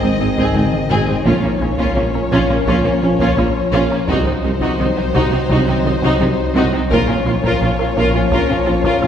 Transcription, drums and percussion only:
0, 0, Header, 1, 2, 480
1, 0, Start_track
1, 0, Key_signature, -5, "minor"
1, 0, Tempo, 705882
1, 857, Time_signature, 4, 2, 24, 8
1, 6170, End_track
2, 0, Start_track
2, 0, Title_t, "Taiko and cinematic ensemble drums"
2, 257, Note_on_c, 9, 41, 76
2, 325, Note_off_c, 9, 41, 0
2, 373, Note_on_c, 9, 47, 92
2, 441, Note_off_c, 9, 47, 0
2, 493, Note_on_c, 9, 47, 87
2, 561, Note_off_c, 9, 47, 0
2, 612, Note_on_c, 9, 45, 87
2, 680, Note_off_c, 9, 45, 0
2, 732, Note_on_c, 9, 43, 89
2, 800, Note_off_c, 9, 43, 0
2, 853, Note_on_c, 9, 41, 94
2, 921, Note_off_c, 9, 41, 0
2, 1209, Note_on_c, 9, 41, 72
2, 1277, Note_off_c, 9, 41, 0
2, 1572, Note_on_c, 9, 41, 70
2, 1640, Note_off_c, 9, 41, 0
2, 1813, Note_on_c, 9, 41, 69
2, 1881, Note_off_c, 9, 41, 0
2, 2173, Note_on_c, 9, 41, 85
2, 2241, Note_off_c, 9, 41, 0
2, 2772, Note_on_c, 9, 41, 101
2, 2840, Note_off_c, 9, 41, 0
2, 3131, Note_on_c, 9, 41, 73
2, 3199, Note_off_c, 9, 41, 0
2, 3494, Note_on_c, 9, 41, 81
2, 3562, Note_off_c, 9, 41, 0
2, 3734, Note_on_c, 9, 41, 75
2, 3802, Note_off_c, 9, 41, 0
2, 4095, Note_on_c, 9, 41, 78
2, 4163, Note_off_c, 9, 41, 0
2, 4694, Note_on_c, 9, 41, 99
2, 4762, Note_off_c, 9, 41, 0
2, 5055, Note_on_c, 9, 41, 71
2, 5123, Note_off_c, 9, 41, 0
2, 5415, Note_on_c, 9, 41, 76
2, 5483, Note_off_c, 9, 41, 0
2, 5652, Note_on_c, 9, 41, 76
2, 5720, Note_off_c, 9, 41, 0
2, 6011, Note_on_c, 9, 41, 87
2, 6079, Note_off_c, 9, 41, 0
2, 6170, End_track
0, 0, End_of_file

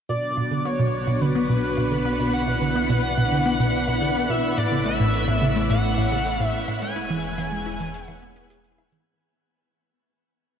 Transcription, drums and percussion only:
0, 0, Header, 1, 2, 480
1, 0, Start_track
1, 0, Tempo, 560748
1, 79, Time_signature, 4, 2, 24, 8
1, 9065, End_track
2, 0, Start_track
2, 0, Title_t, "Drums"
2, 79, Note_on_c, 9, 42, 58
2, 165, Note_off_c, 9, 42, 0
2, 199, Note_on_c, 9, 42, 33
2, 285, Note_off_c, 9, 42, 0
2, 319, Note_on_c, 9, 77, 42
2, 405, Note_off_c, 9, 77, 0
2, 440, Note_on_c, 9, 42, 46
2, 525, Note_off_c, 9, 42, 0
2, 559, Note_on_c, 9, 42, 58
2, 645, Note_off_c, 9, 42, 0
2, 919, Note_on_c, 9, 42, 48
2, 919, Note_on_c, 9, 77, 42
2, 1004, Note_off_c, 9, 42, 0
2, 1004, Note_off_c, 9, 77, 0
2, 1039, Note_on_c, 9, 42, 60
2, 1125, Note_off_c, 9, 42, 0
2, 1159, Note_on_c, 9, 42, 33
2, 1245, Note_off_c, 9, 42, 0
2, 1399, Note_on_c, 9, 42, 47
2, 1485, Note_off_c, 9, 42, 0
2, 1518, Note_on_c, 9, 42, 58
2, 1518, Note_on_c, 9, 77, 42
2, 1604, Note_off_c, 9, 42, 0
2, 1604, Note_off_c, 9, 77, 0
2, 1639, Note_on_c, 9, 42, 34
2, 1724, Note_off_c, 9, 42, 0
2, 1879, Note_on_c, 9, 42, 48
2, 1964, Note_off_c, 9, 42, 0
2, 1998, Note_on_c, 9, 42, 63
2, 2083, Note_off_c, 9, 42, 0
2, 2118, Note_on_c, 9, 42, 35
2, 2118, Note_on_c, 9, 77, 42
2, 2204, Note_off_c, 9, 42, 0
2, 2204, Note_off_c, 9, 77, 0
2, 2358, Note_on_c, 9, 42, 48
2, 2444, Note_off_c, 9, 42, 0
2, 2478, Note_on_c, 9, 42, 65
2, 2564, Note_off_c, 9, 42, 0
2, 2719, Note_on_c, 9, 77, 43
2, 2804, Note_off_c, 9, 77, 0
2, 2838, Note_on_c, 9, 42, 49
2, 2924, Note_off_c, 9, 42, 0
2, 2958, Note_on_c, 9, 42, 63
2, 3044, Note_off_c, 9, 42, 0
2, 3078, Note_on_c, 9, 42, 36
2, 3164, Note_off_c, 9, 42, 0
2, 3317, Note_on_c, 9, 42, 48
2, 3317, Note_on_c, 9, 77, 42
2, 3403, Note_off_c, 9, 42, 0
2, 3403, Note_off_c, 9, 77, 0
2, 3437, Note_on_c, 9, 42, 64
2, 3523, Note_off_c, 9, 42, 0
2, 3558, Note_on_c, 9, 42, 35
2, 3643, Note_off_c, 9, 42, 0
2, 3798, Note_on_c, 9, 42, 50
2, 3884, Note_off_c, 9, 42, 0
2, 3919, Note_on_c, 9, 42, 63
2, 3919, Note_on_c, 9, 77, 40
2, 4005, Note_off_c, 9, 42, 0
2, 4005, Note_off_c, 9, 77, 0
2, 4039, Note_on_c, 9, 42, 36
2, 4124, Note_off_c, 9, 42, 0
2, 4278, Note_on_c, 9, 42, 50
2, 4364, Note_off_c, 9, 42, 0
2, 4398, Note_on_c, 9, 42, 65
2, 4484, Note_off_c, 9, 42, 0
2, 4519, Note_on_c, 9, 77, 40
2, 4605, Note_off_c, 9, 77, 0
2, 4758, Note_on_c, 9, 42, 50
2, 4844, Note_off_c, 9, 42, 0
2, 4878, Note_on_c, 9, 42, 63
2, 4964, Note_off_c, 9, 42, 0
2, 4999, Note_on_c, 9, 42, 37
2, 5085, Note_off_c, 9, 42, 0
2, 5118, Note_on_c, 9, 77, 43
2, 5204, Note_off_c, 9, 77, 0
2, 5238, Note_on_c, 9, 42, 49
2, 5324, Note_off_c, 9, 42, 0
2, 5359, Note_on_c, 9, 42, 64
2, 5444, Note_off_c, 9, 42, 0
2, 5478, Note_on_c, 9, 42, 36
2, 5564, Note_off_c, 9, 42, 0
2, 5719, Note_on_c, 9, 42, 52
2, 5719, Note_on_c, 9, 77, 42
2, 5805, Note_off_c, 9, 42, 0
2, 5805, Note_off_c, 9, 77, 0
2, 5838, Note_on_c, 9, 42, 64
2, 5924, Note_off_c, 9, 42, 0
2, 5957, Note_on_c, 9, 42, 34
2, 6043, Note_off_c, 9, 42, 0
2, 6198, Note_on_c, 9, 42, 48
2, 6283, Note_off_c, 9, 42, 0
2, 6318, Note_on_c, 9, 42, 68
2, 6318, Note_on_c, 9, 77, 42
2, 6404, Note_off_c, 9, 42, 0
2, 6404, Note_off_c, 9, 77, 0
2, 6678, Note_on_c, 9, 42, 51
2, 6764, Note_off_c, 9, 42, 0
2, 6798, Note_on_c, 9, 42, 66
2, 6884, Note_off_c, 9, 42, 0
2, 6918, Note_on_c, 9, 42, 36
2, 6918, Note_on_c, 9, 77, 42
2, 7004, Note_off_c, 9, 42, 0
2, 7004, Note_off_c, 9, 77, 0
2, 7158, Note_on_c, 9, 42, 48
2, 7243, Note_off_c, 9, 42, 0
2, 7278, Note_on_c, 9, 42, 64
2, 7364, Note_off_c, 9, 42, 0
2, 7398, Note_on_c, 9, 42, 38
2, 7483, Note_off_c, 9, 42, 0
2, 7518, Note_on_c, 9, 77, 42
2, 7604, Note_off_c, 9, 77, 0
2, 7638, Note_on_c, 9, 42, 51
2, 7724, Note_off_c, 9, 42, 0
2, 9065, End_track
0, 0, End_of_file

